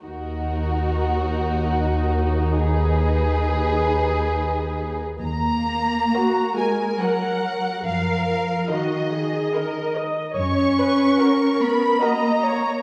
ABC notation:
X:1
M:3/4
L:1/16
Q:1/4=71
K:Ebm
V:1 name="Violin section"
B12 | c8- c3 z | b6 a2 g4 | f4 e6 z2 |
d'6 c'2 b4 |]
V:2 name="Viola section"
E12- | E8- E3 z | z4 G2 B6 | B4 G2 A2 B2 e2 |
d2 c2 B4 e2 d2 |]
V:3 name="Violin section"
G12 | A8- A3 z | z4 [GB]4 [GB]4 | z4 [EB]4 [EB]4 |
z4 [GB]4 [GB]4 |]
V:4 name="Cello section" clef=bass
E,,12- | E,,8- E,,3 z | B,6 A,2 G,4 | F,4 E,6 z2 |
D6 C2 B,4 |]
V:5 name="Double bass section" clef=bass
E,,12- | E,,8- E,,3 z | E,,4 z8 | G,,4 z8 |
G,,4 z8 |]